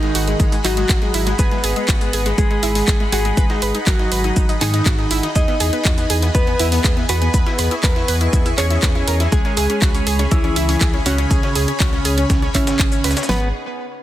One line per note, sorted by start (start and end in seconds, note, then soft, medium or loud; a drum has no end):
0.00 0.55 D#3 medium
0.00 0.10 G#3 medium
0.00 0.55 D#4 loud
0.00 0.55 D#4 medium
0.00 5.32 G#4 medium
0.00 9.28 D#5 medium
0.00 5.32 F#5 medium
0.00 7.30 B5 medium
0.00 snare medium
0.00 closed hi-hat soft
0.15 0.35 G#1 loud
0.15 0.22 F#4 loud
0.15 open hi-hat loud
0.15 shaker medium
0.28 0.35 G#3 medium
0.28 closed hi-hat medium
0.40 0.60 G#1 loud
0.40 0.47 G#3 medium
0.40 kick loud
0.40 closed hi-hat medium
0.40 shaker medium
0.52 0.59 G#3 medium
0.52 closed hi-hat soft
0.64 0.84 G#1 loud
0.64 1.29 F#3 medium
0.64 0.72 D#4 medium
0.64 1.29 F#4 medium
0.64 clap medium
0.64 open hi-hat loud
0.64 shaker medium
0.77 0.84 G#3 medium
0.77 snare soft
0.77 closed hi-hat medium
0.89 1.09 G#1 medium
0.89 0.97 F#4 medium
0.89 kick loud
0.89 snare loud
0.89 clap loud
0.89 closed hi-hat medium
0.89 shaker medium
1.02 1.09 G#3 medium
1.02 snare soft
1.02 closed hi-hat soft
1.14 1.34 G#1 loud
1.14 1.21 E4 medium
1.14 open hi-hat loud
1.14 shaker medium
1.27 1.34 G#3 medium
1.27 snare medium
1.27 closed hi-hat medium
1.39 1.49 G#1 loud
1.39 2.28 B3 medium
1.39 1.46 G#4 loud
1.39 2.28 B4 loud
1.39 2.28 B4 medium
1.39 kick loud
1.39 closed hi-hat medium
1.39 shaker medium
1.51 1.59 G#3 medium
1.51 snare soft
1.51 closed hi-hat soft
1.64 1.74 G#1 medium
1.64 1.71 G#4 medium
1.64 snare soft
1.64 open hi-hat loud
1.64 shaker medium
1.76 1.83 G#3 medium
1.76 closed hi-hat medium
1.88 2.08 G#1 loud
1.88 1.96 F#4 medium
1.88 kick loud
1.88 snare loud
1.88 clap loud
1.88 closed hi-hat medium
1.88 shaker loud
2.01 2.08 G#3 medium
2.01 closed hi-hat soft
2.13 2.33 G#1 loud
2.13 2.20 G#4 medium
2.13 open hi-hat loud
2.13 shaker medium
2.26 2.33 G#3 medium
2.26 snare soft
2.26 closed hi-hat medium
2.38 2.58 G#1 loud
2.38 3.03 G#3 medium
2.38 2.45 G#3 medium
2.38 3.03 G#4 loud
2.38 3.03 G#4 medium
2.38 kick loud
2.38 closed hi-hat soft
2.38 shaker medium
2.51 2.58 G#3 medium
2.51 closed hi-hat soft
2.63 2.83 G#1 medium
2.63 2.70 E4 medium
2.63 open hi-hat loud
2.63 shaker medium
2.75 2.82 G#3 medium
2.75 snare soft
2.75 open hi-hat medium
2.88 3.08 G#1 medium
2.88 2.95 G#4 loud
2.88 kick loud
2.88 snare loud
2.88 clap loud
2.88 closed hi-hat medium
2.88 shaker medium
3.00 3.07 G#3 medium
3.00 snare soft
3.00 closed hi-hat soft
3.12 3.32 G#1 loud
3.12 3.77 G#3 medium
3.12 3.20 F#4 medium
3.12 3.77 G#4 medium
3.12 open hi-hat loud
3.12 shaker medium
3.25 3.32 G#3 medium
3.25 closed hi-hat medium
3.37 3.47 G#1 loud
3.37 3.44 B4 loud
3.37 kick loud
3.37 closed hi-hat medium
3.37 shaker medium
3.50 3.57 D#4 medium
3.50 snare medium
3.50 closed hi-hat soft
3.62 3.72 G#1 medium
3.62 3.69 B4 medium
3.62 snare medium
3.62 open hi-hat loud
3.62 shaker medium
3.75 3.82 D#4 medium
3.75 closed hi-hat medium
3.87 4.07 G#1 loud
3.87 4.51 F#3 medium
3.87 4.51 F#4 medium
3.87 3.94 A#4 medium
3.87 kick loud
3.87 snare loud
3.87 clap loud
3.87 open hi-hat medium
3.87 shaker medium
3.99 4.06 D#4 medium
3.99 snare medium
3.99 closed hi-hat soft
4.12 4.31 G#1 loud
4.12 4.19 B4 medium
4.12 open hi-hat loud
4.12 shaker medium
4.24 4.31 D#4 medium
4.24 closed hi-hat medium
4.36 4.56 G#1 loud
4.36 4.44 D#4 medium
4.36 kick loud
4.36 closed hi-hat medium
4.36 shaker medium
4.49 4.56 D#4 medium
4.49 closed hi-hat soft
4.61 4.81 G#2 medium
4.61 5.26 D#3 medium
4.61 5.26 D#4 medium
4.61 4.68 G#4 medium
4.61 clap medium
4.61 open hi-hat loud
4.61 shaker medium
4.74 4.81 D#4 medium
4.74 snare soft
4.74 closed hi-hat medium
4.86 5.06 G#2 loud
4.86 4.93 F#4 medium
4.86 kick loud
4.86 snare loud
4.86 clap loud
4.86 closed hi-hat medium
4.86 shaker medium
4.98 5.06 D#4 medium
4.98 snare soft
4.98 closed hi-hat soft
5.11 5.21 G#1 medium
5.11 5.18 E4 medium
5.11 open hi-hat loud
5.11 shaker medium
5.23 5.30 D#4 medium
5.23 snare medium
5.23 closed hi-hat medium
5.35 5.46 E2 loud
5.35 6.25 D#4 medium
5.35 5.43 G#4 loud
5.35 13.25 G#4 medium
5.35 6.25 D#5 loud
5.35 13.25 G#5 medium
5.35 kick loud
5.35 closed hi-hat medium
5.35 shaker medium
5.48 5.55 B3 medium
5.48 snare soft
5.48 closed hi-hat soft
5.60 5.70 E2 medium
5.60 5.68 G#4 medium
5.60 snare soft
5.60 open hi-hat loud
5.60 shaker medium
5.73 5.80 B3 medium
5.73 closed hi-hat medium
5.85 6.05 E2 loud
5.85 5.92 F#4 medium
5.85 kick loud
5.85 snare loud
5.85 clap loud
5.85 closed hi-hat soft
5.85 shaker medium
5.98 6.05 B3 medium
5.98 closed hi-hat soft
6.10 6.30 E2 loud
6.10 6.17 G#4 medium
6.10 open hi-hat loud
6.10 shaker medium
6.22 6.30 B3 medium
6.22 snare soft
6.22 closed hi-hat soft
6.35 6.55 E2 medium
6.35 6.99 B3 medium
6.35 6.42 B3 medium
6.35 6.99 B4 loud
6.35 6.99 B4 medium
6.35 kick loud
6.35 closed hi-hat soft
6.35 shaker medium
6.47 6.54 B3 medium
6.47 closed hi-hat soft
6.59 6.79 E2 loud
6.59 6.67 E4 medium
6.59 open hi-hat loud
6.59 shaker medium
6.72 6.79 B3 medium
6.72 snare soft
6.72 open hi-hat medium
6.84 7.04 E2 medium
6.84 6.91 G#4 loud
6.84 kick loud
6.84 snare loud
6.84 clap loud
6.84 closed hi-hat medium
6.84 shaker medium
6.97 7.04 B3 medium
6.97 snare soft
6.97 closed hi-hat soft
7.09 7.29 E2 loud
7.09 7.74 B3 medium
7.09 7.16 F#4 medium
7.09 7.74 B4 medium
7.09 open hi-hat loud
7.09 shaker medium
7.22 7.29 B3 medium
7.22 closed hi-hat medium
7.34 7.44 E2 loud
7.34 7.41 B4 loud
7.34 9.30 C#6 medium
7.34 kick loud
7.34 closed hi-hat medium
7.34 shaker medium
7.46 7.53 E4 medium
7.46 snare medium
7.46 closed hi-hat soft
7.59 7.69 E2 loud
7.59 7.66 B4 medium
7.59 snare soft
7.59 open hi-hat loud
7.59 shaker medium
7.71 7.78 E4 medium
7.71 closed hi-hat medium
7.83 8.03 E2 loud
7.83 8.48 B3 medium
7.83 7.91 A#4 medium
7.83 8.48 B4 medium
7.83 kick loud
7.83 snare loud
7.83 clap loud
7.83 open hi-hat medium
7.83 shaker medium
7.96 8.03 E4 medium
7.96 snare medium
7.96 closed hi-hat soft
8.08 8.28 E2 loud
8.08 8.15 B4 loud
8.08 open hi-hat loud
8.08 shaker medium
8.21 8.28 E4 medium
8.21 closed hi-hat medium
8.33 8.53 E2 loud
8.33 8.40 E4 medium
8.33 kick loud
8.33 closed hi-hat medium
8.33 shaker medium
8.46 8.53 E4 medium
8.46 closed hi-hat soft
8.58 8.78 E2 medium
8.58 9.22 C#4 medium
8.58 8.65 G#4 medium
8.58 9.23 C#5 medium
8.58 9.22 C#5 medium
8.58 clap medium
8.58 open hi-hat loud
8.58 shaker medium
8.70 8.77 E4 medium
8.70 snare soft
8.70 closed hi-hat medium
8.83 9.03 E2 medium
8.83 8.90 B4 medium
8.83 kick loud
8.83 snare loud
8.83 clap loud
8.83 closed hi-hat medium
8.83 shaker medium
8.95 9.02 E4 medium
8.95 snare soft
8.95 closed hi-hat soft
9.07 9.27 E2 loud
9.07 9.15 A#4 medium
9.07 open hi-hat loud
9.07 shaker medium
9.20 9.27 E4 medium
9.20 snare medium
9.20 closed hi-hat medium
9.32 9.42 C#2 loud
9.32 10.22 G#3 medium
9.32 9.39 G#4 loud
9.32 10.22 G#4 loud
9.32 10.22 G#4 medium
9.32 13.25 C#5 medium
9.32 13.25 B5 medium
9.32 kick loud
9.32 closed hi-hat medium
9.32 shaker medium
9.45 9.52 C#4 medium
9.45 snare soft
9.45 closed hi-hat soft
9.57 9.67 C#2 medium
9.57 9.64 G#4 medium
9.57 snare soft
9.57 open hi-hat loud
9.57 shaker medium
9.70 9.77 C#4 medium
9.70 closed hi-hat medium
9.82 10.02 C#2 medium
9.82 9.89 F#4 medium
9.82 kick loud
9.82 snare loud
9.82 clap loud
9.82 closed hi-hat medium
9.82 shaker medium
9.94 10.01 C#4 medium
9.94 closed hi-hat soft
10.07 10.27 C#2 loud
10.07 10.14 G#4 loud
10.07 open hi-hat loud
10.07 shaker medium
10.19 10.26 C#4 medium
10.19 snare soft
10.19 closed hi-hat medium
10.31 10.51 C#2 loud
10.31 10.96 E3 medium
10.31 10.39 C#4 medium
10.31 10.96 E4 medium
10.31 kick loud
10.31 closed hi-hat medium
10.31 shaker medium
10.44 10.51 C#4 medium
10.44 closed hi-hat soft
10.56 10.76 C#2 loud
10.56 10.63 E4 medium
10.56 open hi-hat loud
10.56 shaker medium
10.69 10.76 C#4 medium
10.69 snare soft
10.69 open hi-hat medium
10.81 11.01 C#2 medium
10.81 10.88 G#4 medium
10.81 kick loud
10.81 snare loud
10.81 clap loud
10.81 closed hi-hat medium
10.81 shaker medium
10.94 11.01 C#4 medium
10.94 snare soft
10.94 closed hi-hat soft
11.06 11.26 C#2 loud
11.06 11.70 C#3 medium
11.06 11.71 C#4 medium
11.06 11.70 C#4 medium
11.06 11.13 F#4 medium
11.06 open hi-hat loud
11.06 shaker medium
11.18 11.25 C#4 medium
11.18 closed hi-hat medium
11.31 11.41 C#2 loud
11.31 11.38 G#4 loud
11.31 kick loud
11.31 closed hi-hat medium
11.31 shaker medium
11.43 11.50 C#4 medium
11.43 snare medium
11.43 closed hi-hat soft
11.55 11.65 C#2 medium
11.55 11.63 G#4 medium
11.55 snare soft
11.55 open hi-hat loud
11.55 shaker medium
11.68 11.75 C#4 medium
11.68 closed hi-hat medium
11.80 12.00 C#2 loud
11.80 12.45 C#3 medium
11.80 12.45 C#4 loud
11.80 12.45 C#4 medium
11.80 11.87 F#4 medium
11.80 kick loud
11.80 snare loud
11.80 clap loud
11.80 open hi-hat medium
11.80 shaker medium
11.93 12.00 C#4 medium
11.93 snare medium
11.93 closed hi-hat soft
12.05 12.25 C#2 loud
12.05 12.12 G#4 loud
12.05 open hi-hat loud
12.05 shaker medium
12.18 12.25 C#4 medium
12.18 closed hi-hat medium
12.30 12.50 C#2 loud
12.30 12.37 C#4 medium
12.30 kick loud
12.30 snare loud
12.30 closed hi-hat medium
12.30 shaker medium
12.42 12.49 C#4 medium
12.42 snare soft
12.42 closed hi-hat soft
12.54 12.74 G#1 medium
12.54 13.19 C#3 medium
12.54 13.19 C#4 loud
12.54 13.19 C#4 medium
12.54 12.62 E4 medium
12.54 kick medium
12.54 clap medium
12.54 open hi-hat loud
12.54 shaker medium
12.67 12.74 C#4 medium
12.67 snare loud
12.67 closed hi-hat medium
12.67 shaker medium
12.79 12.99 G#1 loud
12.79 12.87 G#4 medium
12.79 kick loud
12.79 clap loud
12.79 closed hi-hat medium
12.92 12.99 C#4 medium
12.92 closed hi-hat soft
12.92 shaker medium
13.04 13.14 C#2 medium
13.04 13.11 B4 medium
13.04 snare medium
13.04 open hi-hat loud
13.04 shaker medium
13.11 snare medium
13.11 shaker medium
13.17 13.24 C#4 medium
13.17 snare medium
13.17 closed hi-hat medium
13.17 shaker medium
13.23 snare medium
13.23 shaker medium
13.29 13.52 G#1 loud
13.29 13.47 B3 medium
13.29 13.52 D#4 medium
13.29 13.52 G#4 medium
13.29 13.47 B4 medium
13.29 13.52 B4 medium
13.29 13.52 F#5 medium
13.29 snare loud